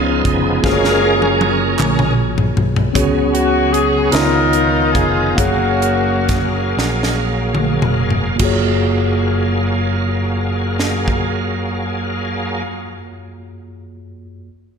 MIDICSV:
0, 0, Header, 1, 6, 480
1, 0, Start_track
1, 0, Key_signature, 6, "major"
1, 0, Tempo, 772201
1, 395, Time_signature, 6, 3, 24, 8
1, 2316, Tempo, 825309
1, 3276, Tempo, 909091
1, 3756, Tempo, 995025
1, 4236, Tempo, 1117318
1, 4716, Tempo, 1190476
1, 7290, End_track
2, 0, Start_track
2, 0, Title_t, "Horn section"
2, 0, Program_c, 0, 61
2, 2077, Note_on_c, 0, 66, 70
2, 2302, Note_off_c, 0, 66, 0
2, 2319, Note_on_c, 0, 68, 82
2, 2547, Note_on_c, 0, 70, 99
2, 2549, Note_off_c, 0, 68, 0
2, 2559, Note_on_c, 0, 63, 78
2, 2560, Note_on_c, 0, 65, 74
2, 3003, Note_off_c, 0, 70, 0
2, 3015, Note_on_c, 0, 68, 85
2, 3259, Note_off_c, 0, 63, 0
2, 3260, Note_off_c, 0, 65, 0
2, 3271, Note_off_c, 0, 68, 0
2, 3271, Note_on_c, 0, 66, 82
2, 3284, Note_on_c, 0, 61, 56
2, 3286, Note_on_c, 0, 58, 53
2, 4220, Note_off_c, 0, 61, 0
2, 4221, Note_off_c, 0, 58, 0
2, 4234, Note_off_c, 0, 66, 0
2, 7290, End_track
3, 0, Start_track
3, 0, Title_t, "Tine electric piano"
3, 0, Program_c, 1, 4
3, 0, Control_c, 1, 64, 127
3, 0, Note_on_c, 1, 49, 52
3, 0, Note_on_c, 1, 59, 53
3, 0, Note_on_c, 1, 61, 49
3, 0, Note_on_c, 1, 65, 52
3, 0, Note_on_c, 1, 68, 52
3, 0, Note_on_c, 1, 73, 57
3, 373, Note_off_c, 1, 49, 0
3, 381, Note_off_c, 1, 65, 0
3, 384, Note_on_c, 1, 58, 57
3, 389, Note_on_c, 1, 65, 52
3, 394, Note_off_c, 1, 59, 0
3, 395, Note_off_c, 1, 68, 0
3, 396, Note_off_c, 1, 61, 0
3, 397, Note_on_c, 1, 66, 52
3, 403, Control_c, 1, 64, 0
3, 403, Note_on_c, 1, 68, 54
3, 411, Note_on_c, 1, 72, 48
3, 421, Note_off_c, 1, 73, 0
3, 444, Note_off_c, 1, 72, 0
3, 450, Note_on_c, 1, 73, 67
3, 519, Control_c, 1, 64, 127
3, 1801, Note_off_c, 1, 58, 0
3, 1804, Note_off_c, 1, 65, 0
3, 1808, Note_off_c, 1, 66, 0
3, 1811, Note_off_c, 1, 68, 0
3, 1822, Note_on_c, 1, 59, 62
3, 1827, Note_on_c, 1, 61, 61
3, 1828, Note_on_c, 1, 49, 62
3, 1831, Note_off_c, 1, 73, 0
3, 1832, Note_on_c, 1, 66, 61
3, 1833, Note_on_c, 1, 68, 58
3, 1838, Note_on_c, 1, 73, 72
3, 1840, Control_c, 1, 64, 0
3, 1941, Control_c, 1, 64, 127
3, 2523, Note_off_c, 1, 49, 0
3, 2534, Note_off_c, 1, 59, 0
3, 2541, Note_on_c, 1, 59, 54
3, 2543, Note_on_c, 1, 63, 52
3, 2546, Note_off_c, 1, 61, 0
3, 2546, Note_off_c, 1, 73, 0
3, 2547, Note_on_c, 1, 49, 53
3, 2547, Note_on_c, 1, 65, 52
3, 2548, Note_off_c, 1, 66, 0
3, 2549, Note_off_c, 1, 68, 0
3, 2550, Note_on_c, 1, 70, 52
3, 2553, Note_on_c, 1, 73, 61
3, 2555, Control_c, 1, 64, 0
3, 2651, Control_c, 1, 64, 127
3, 3253, Note_off_c, 1, 49, 0
3, 3263, Note_on_c, 1, 58, 56
3, 3270, Note_on_c, 1, 77, 50
3, 3274, Note_off_c, 1, 59, 0
3, 3275, Note_off_c, 1, 63, 0
3, 3276, Note_off_c, 1, 65, 0
3, 3278, Note_off_c, 1, 70, 0
3, 3279, Note_off_c, 1, 73, 0
3, 3279, Note_on_c, 1, 66, 51
3, 3284, Control_c, 1, 64, 0
3, 3284, Note_on_c, 1, 68, 54
3, 3288, Note_on_c, 1, 73, 61
3, 3369, Control_c, 1, 64, 127
3, 4694, Note_off_c, 1, 58, 0
3, 4697, Note_off_c, 1, 77, 0
3, 4699, Note_on_c, 1, 58, 65
3, 4700, Note_off_c, 1, 66, 0
3, 4702, Note_off_c, 1, 68, 0
3, 4704, Note_off_c, 1, 73, 0
3, 4709, Note_on_c, 1, 65, 60
3, 4718, Note_on_c, 1, 66, 57
3, 4719, Note_on_c, 1, 42, 62
3, 4722, Control_c, 1, 64, 0
3, 4726, Note_on_c, 1, 68, 57
3, 4736, Note_on_c, 1, 73, 71
3, 4798, Control_c, 1, 64, 127
3, 6403, Note_off_c, 1, 58, 0
3, 6412, Note_off_c, 1, 65, 0
3, 6420, Note_off_c, 1, 66, 0
3, 6421, Note_off_c, 1, 42, 0
3, 6429, Note_off_c, 1, 68, 0
3, 6438, Note_off_c, 1, 73, 0
3, 7170, Control_c, 1, 64, 0
3, 7290, End_track
4, 0, Start_track
4, 0, Title_t, "Tonewheel organ"
4, 0, Program_c, 2, 16
4, 0, Note_on_c, 2, 53, 50
4, 0, Note_on_c, 2, 59, 50
4, 0, Note_on_c, 2, 63, 55
4, 0, Note_on_c, 2, 68, 87
4, 0, Note_on_c, 2, 77, 59
4, 135, Note_off_c, 2, 77, 0
4, 155, Note_off_c, 2, 68, 0
4, 163, Note_on_c, 2, 68, 80
4, 373, Note_off_c, 2, 53, 0
4, 375, Note_off_c, 2, 63, 0
4, 376, Note_off_c, 2, 59, 0
4, 394, Note_off_c, 2, 68, 0
4, 394, Note_on_c, 2, 56, 46
4, 396, Note_on_c, 2, 61, 60
4, 398, Note_on_c, 2, 58, 45
4, 401, Note_on_c, 2, 68, 58
4, 404, Note_on_c, 2, 77, 53
4, 405, Note_on_c, 2, 70, 87
4, 713, Note_off_c, 2, 56, 0
4, 715, Note_off_c, 2, 58, 0
4, 718, Note_off_c, 2, 77, 0
4, 1328, Note_off_c, 2, 61, 0
4, 1331, Note_off_c, 2, 68, 0
4, 1333, Note_off_c, 2, 70, 0
4, 1830, Note_on_c, 2, 68, 57
4, 1833, Note_on_c, 2, 59, 51
4, 1833, Note_on_c, 2, 61, 50
4, 1834, Note_on_c, 2, 54, 51
4, 2539, Note_off_c, 2, 59, 0
4, 2540, Note_off_c, 2, 68, 0
4, 2542, Note_off_c, 2, 54, 0
4, 2542, Note_off_c, 2, 61, 0
4, 2546, Note_on_c, 2, 59, 52
4, 2549, Note_on_c, 2, 51, 58
4, 2550, Note_on_c, 2, 65, 65
4, 2550, Note_on_c, 2, 70, 53
4, 3269, Note_off_c, 2, 59, 0
4, 3270, Note_off_c, 2, 51, 0
4, 3271, Note_off_c, 2, 65, 0
4, 3271, Note_off_c, 2, 70, 0
4, 3277, Note_on_c, 2, 54, 55
4, 3278, Note_on_c, 2, 77, 50
4, 3279, Note_on_c, 2, 68, 63
4, 3281, Note_on_c, 2, 58, 51
4, 4704, Note_off_c, 2, 54, 0
4, 4704, Note_off_c, 2, 68, 0
4, 4704, Note_off_c, 2, 77, 0
4, 4705, Note_off_c, 2, 58, 0
4, 4718, Note_on_c, 2, 54, 49
4, 4718, Note_on_c, 2, 68, 58
4, 4720, Note_on_c, 2, 58, 47
4, 4720, Note_on_c, 2, 77, 45
4, 6420, Note_off_c, 2, 54, 0
4, 6420, Note_off_c, 2, 68, 0
4, 6422, Note_off_c, 2, 58, 0
4, 6423, Note_off_c, 2, 77, 0
4, 7290, End_track
5, 0, Start_track
5, 0, Title_t, "Fingered electric bass"
5, 0, Program_c, 3, 33
5, 0, Note_on_c, 3, 37, 90
5, 128, Note_off_c, 3, 37, 0
5, 156, Note_on_c, 3, 29, 72
5, 376, Note_off_c, 3, 29, 0
5, 395, Note_on_c, 3, 30, 85
5, 1089, Note_off_c, 3, 30, 0
5, 1116, Note_on_c, 3, 34, 84
5, 1569, Note_off_c, 3, 34, 0
5, 1594, Note_on_c, 3, 35, 86
5, 1814, Note_off_c, 3, 35, 0
5, 1834, Note_on_c, 3, 37, 75
5, 2526, Note_off_c, 3, 37, 0
5, 2553, Note_on_c, 3, 37, 80
5, 3007, Note_off_c, 3, 37, 0
5, 3025, Note_on_c, 3, 29, 82
5, 3256, Note_off_c, 3, 29, 0
5, 3277, Note_on_c, 3, 30, 72
5, 3971, Note_off_c, 3, 30, 0
5, 3991, Note_on_c, 3, 34, 77
5, 4452, Note_off_c, 3, 34, 0
5, 4468, Note_on_c, 3, 29, 77
5, 4699, Note_off_c, 3, 29, 0
5, 4716, Note_on_c, 3, 30, 70
5, 6418, Note_off_c, 3, 30, 0
5, 7290, End_track
6, 0, Start_track
6, 0, Title_t, "Drums"
6, 156, Note_on_c, 9, 36, 74
6, 156, Note_on_c, 9, 42, 34
6, 218, Note_off_c, 9, 36, 0
6, 218, Note_off_c, 9, 42, 0
6, 396, Note_on_c, 9, 36, 89
6, 404, Note_on_c, 9, 38, 48
6, 459, Note_off_c, 9, 36, 0
6, 466, Note_off_c, 9, 38, 0
6, 525, Note_on_c, 9, 38, 45
6, 587, Note_off_c, 9, 38, 0
6, 759, Note_on_c, 9, 48, 49
6, 821, Note_off_c, 9, 48, 0
6, 876, Note_on_c, 9, 48, 68
6, 939, Note_off_c, 9, 48, 0
6, 1112, Note_on_c, 9, 39, 81
6, 1116, Note_on_c, 9, 47, 74
6, 1175, Note_off_c, 9, 39, 0
6, 1179, Note_off_c, 9, 47, 0
6, 1237, Note_on_c, 9, 45, 69
6, 1299, Note_off_c, 9, 45, 0
6, 1478, Note_on_c, 9, 43, 74
6, 1541, Note_off_c, 9, 43, 0
6, 1597, Note_on_c, 9, 43, 79
6, 1660, Note_off_c, 9, 43, 0
6, 1718, Note_on_c, 9, 43, 77
6, 1780, Note_off_c, 9, 43, 0
6, 1836, Note_on_c, 9, 36, 87
6, 1840, Note_on_c, 9, 42, 75
6, 1898, Note_off_c, 9, 36, 0
6, 1902, Note_off_c, 9, 42, 0
6, 2080, Note_on_c, 9, 42, 41
6, 2142, Note_off_c, 9, 42, 0
6, 2324, Note_on_c, 9, 42, 49
6, 2382, Note_off_c, 9, 42, 0
6, 2547, Note_on_c, 9, 42, 72
6, 2561, Note_on_c, 9, 38, 86
6, 2605, Note_off_c, 9, 42, 0
6, 2619, Note_off_c, 9, 38, 0
6, 2784, Note_on_c, 9, 42, 39
6, 2842, Note_off_c, 9, 42, 0
6, 3028, Note_on_c, 9, 36, 75
6, 3030, Note_on_c, 9, 42, 33
6, 3086, Note_off_c, 9, 36, 0
6, 3088, Note_off_c, 9, 42, 0
6, 3278, Note_on_c, 9, 36, 85
6, 3278, Note_on_c, 9, 42, 72
6, 3331, Note_off_c, 9, 36, 0
6, 3331, Note_off_c, 9, 42, 0
6, 3511, Note_on_c, 9, 42, 43
6, 3564, Note_off_c, 9, 42, 0
6, 3756, Note_on_c, 9, 42, 48
6, 3759, Note_on_c, 9, 36, 76
6, 3763, Note_on_c, 9, 38, 33
6, 3805, Note_off_c, 9, 42, 0
6, 3807, Note_off_c, 9, 36, 0
6, 3812, Note_off_c, 9, 38, 0
6, 3997, Note_on_c, 9, 38, 49
6, 4046, Note_off_c, 9, 38, 0
6, 4116, Note_on_c, 9, 38, 47
6, 4165, Note_off_c, 9, 38, 0
6, 4350, Note_on_c, 9, 47, 62
6, 4393, Note_off_c, 9, 47, 0
6, 4469, Note_on_c, 9, 45, 67
6, 4512, Note_off_c, 9, 45, 0
6, 4590, Note_on_c, 9, 43, 65
6, 4633, Note_off_c, 9, 43, 0
6, 4714, Note_on_c, 9, 49, 63
6, 4716, Note_on_c, 9, 36, 80
6, 4754, Note_off_c, 9, 49, 0
6, 4756, Note_off_c, 9, 36, 0
6, 5682, Note_on_c, 9, 38, 47
6, 5723, Note_off_c, 9, 38, 0
6, 5796, Note_on_c, 9, 36, 55
6, 5836, Note_off_c, 9, 36, 0
6, 7290, End_track
0, 0, End_of_file